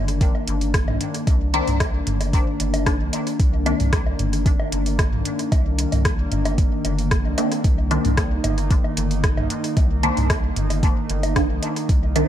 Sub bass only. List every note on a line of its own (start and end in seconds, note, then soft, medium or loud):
0.00 0.29 G1 medium
0.48 0.89 G1 medium
0.88 0.97 C2 loud
1.27 1.61 C2 loud
1.67 2.01 C2 medium
2.07 2.41 G1 medium
2.60 3.02 G1 medium
3.00 3.10 C2 loud
3.40 3.74 C2 loud
3.80 4.14 C2 loud
4.19 4.54 G1 medium
4.72 5.14 G1 medium
5.13 5.22 C2 loud
5.52 5.86 C2 loud
5.92 6.26 C2 medium
6.32 6.66 G1 medium
6.85 7.27 G1 medium
7.25 7.34 C2 loud
7.64 7.99 C2 loud
8.05 8.38 C2 medium
8.44 8.78 G1 medium
8.97 9.39 G1 medium
9.37 9.47 C2 loud
9.77 10.11 C2 loud
10.17 10.51 C2 loud
10.56 10.91 G1 medium
11.10 11.51 G1 medium
11.50 11.59 C2 loud
11.89 12.23 C2 loud